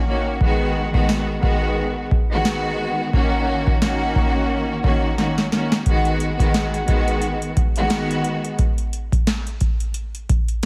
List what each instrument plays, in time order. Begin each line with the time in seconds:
0.07 string section D#3 A#3 C#4 F#4
0.41 string section D#3 G#3 B3 F#4, kick
0.92 string section D#3 G#3 B3 F#4, kick
1.09 snare
1.40 string section D#3 G#3 B3 F#4, kick
2.11 kick
2.32 string section D#3 G#3 B3 F#4
2.45 snare
3.13 string section D#3 A#3 C#4 F#4, kick
3.67 kick
3.81 string section D#3 A#3 C#4 F#4, snare
4.16 kick
4.82 string section D#3 A#3 C#4 F#4, kick
5.17 string section D#3 A#3 C#4 F#4, snare
5.38 snare
5.52 string section D#3 A#3 C#4 F#4, snare
5.72 snare
5.86 string section D#3 G#3 B3 F#4, kick, closed hi-hat
6.05 closed hi-hat
6.20 closed hi-hat
6.38 string section D#3 G#3 B3 F#4, kick, closed hi-hat
6.54 snare, closed hi-hat
6.74 closed hi-hat
6.86 string section D#3 G#3 B3 F#4, kick, closed hi-hat
7.08 closed hi-hat
7.22 closed hi-hat
7.42 closed hi-hat
7.57 kick, closed hi-hat
7.76 string section D#3 G#3 B3 F#4, closed hi-hat
7.90 snare, closed hi-hat
8.11 closed hi-hat
8.24 closed hi-hat
8.45 closed hi-hat
8.59 kick, closed hi-hat
8.78 closed hi-hat
8.93 closed hi-hat
9.12 kick, closed hi-hat
9.27 snare, closed hi-hat
9.47 closed hi-hat
9.61 kick, closed hi-hat
9.80 closed hi-hat
9.94 closed hi-hat
10.15 closed hi-hat
10.29 kick, closed hi-hat
10.48 closed hi-hat